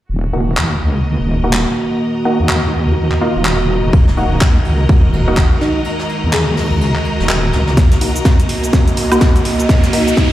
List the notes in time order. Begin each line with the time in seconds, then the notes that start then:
0.09 D#1 D#3 A#3 F#4
0.33 D#1 A#3 D#4 F#4
0.50 A#4
0.57 D#2, clap
0.80 C#2 D#5
1.20 D#1
1.44 A#3 D#4 F#4
1.53 clap
1.63 A#5
2.25 A#3 D#4 F#4
2.40 D#2
2.49 clap
2.88 D#2
3.12 clap
3.21 A#3 D#4 F4
3.36 D#1
3.45 clap
3.84 D#1
3.93 D#1 G#3, kick, ride
4.08 snare
4.17 D#1 A#3 D#4 F#4, ride
4.41 D#2, kick, snare, clap, ride
4.65 C#2, ride
4.89 kick, ride
5.04 D#1
5.13 ride
5.28 A#3 D#4 F#4
5.37 F#4, kick, snare, clap
5.61 D#4, snare, ride
5.85 ride
5.99 snare
6.09 ride
6.24 D#2
6.33 G#4, snare, clap, ride
6.48 G#4
6.57 snare, open hi-hat
6.72 C#2
6.81 ride
6.95 clap
7.05 ride
7.20 D#1, snare
7.29 D#1, snare, clap, ride
7.44 ride
7.53 C#2, snare, ride
7.67 snare
7.77 A#3 F#4 D#5, kick, snare, closed hi-hat, ride, riser, shaker
7.92 snare, closed hi-hat, shaker
8.01 A#3 D#4 F#4, open hi-hat, ride
8.16 closed hi-hat, shaker
8.25 kick, snare, closed hi-hat, ride, shaker
8.40 closed hi-hat, shaker
8.48 open hi-hat, ride
8.64 closed hi-hat, shaker
8.73 kick, snare, closed hi-hat, ride, shaker
8.88 closed hi-hat, shaker
8.97 open hi-hat, ride
9.12 A#3 D#4 F#4, closed hi-hat, high woodblock, shaker
9.21 F#4, kick, snare, closed hi-hat, ride, shaker
9.36 closed hi-hat, shaker
9.45 snare, open hi-hat, ride
9.60 closed hi-hat, shaker
9.69 kick, snare, closed hi-hat, ride, shaker
9.84 snare, closed hi-hat, shaker
9.93 A#3 D#4 F#4, open hi-hat, ride
10.08 closed hi-hat, shaker
10.17 kick, snare, closed hi-hat, ride, shaker